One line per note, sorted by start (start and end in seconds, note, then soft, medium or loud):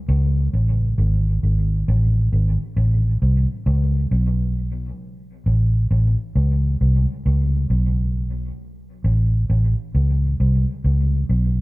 0.09 0.48 C#2 loud
0.53 0.93 A1 medium
0.98 1.37 G#1 medium
1.43 1.82 G#1 medium
1.88 2.27 A1 loud
2.32 2.56 G#1 medium
2.77 3.16 A1 medium
3.22 3.46 C2 medium
3.66 4.06 C#2 loud
4.11 4.91 B1 medium
5.46 5.85 A1 medium
5.91 6.14 A1 medium
6.36 6.75 C#2 medium
6.81 7.04 C2 medium
7.26 7.65 C#2 medium
7.70 8.50 B1 medium
9.04 9.44 A1 medium
9.50 9.73 A1 medium
9.95 10.34 C#2 medium
10.40 10.64 C2 medium
10.84 11.24 C#2 medium
11.29 11.61 B1 medium